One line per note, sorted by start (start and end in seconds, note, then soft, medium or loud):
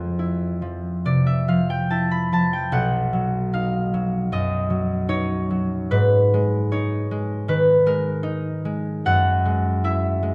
0.00 2.76 F2 medium
0.00 0.61 F3 soft
0.00 0.18 E4 soft
0.00 2.76 C5 medium
0.00 0.90 E5 medium
0.19 1.90 E4 soft
0.62 1.47 F3 soft
1.05 2.76 C3 soft
1.05 1.41 D5 medium
1.26 1.62 E5 medium
1.48 2.31 F3 soft
1.48 1.83 F5 medium
1.70 2.04 G5 medium
1.90 2.76 E4 soft
1.90 2.25 A5 medium
2.11 2.46 B5 medium
2.32 2.76 F3 soft
2.32 2.67 A5 medium
2.53 2.87 G5 medium
2.72 5.93 B1 medium
2.72 5.93 F#5 medium
3.13 3.92 F#3 soft
3.53 5.08 D#4 soft
3.53 4.85 F5 medium
3.94 4.69 F#3 soft
4.32 5.94 F#2 soft
4.32 8.23 D#5 medium
4.70 5.49 F#3 soft
5.09 6.71 D#4 soft
5.09 6.47 C#5 medium
5.50 5.94 F#3 soft
5.91 9.11 G#2 medium
5.91 7.47 B4 medium
6.34 7.10 G#3 soft
6.72 8.22 D#4 soft
6.72 8.01 C#5 medium
7.11 7.85 G#3 soft
7.48 9.11 D#3 soft
7.48 9.11 B4 medium
7.86 8.64 G#3 soft
7.86 10.35 A#4 medium
8.23 10.35 D#4 medium
8.65 9.44 G#3 soft
9.06 10.35 F#2 medium
9.06 10.35 F#5 medium
9.46 10.21 G#3 soft
9.84 10.35 E4 soft
9.84 10.35 E5 medium
10.23 10.35 G#3 soft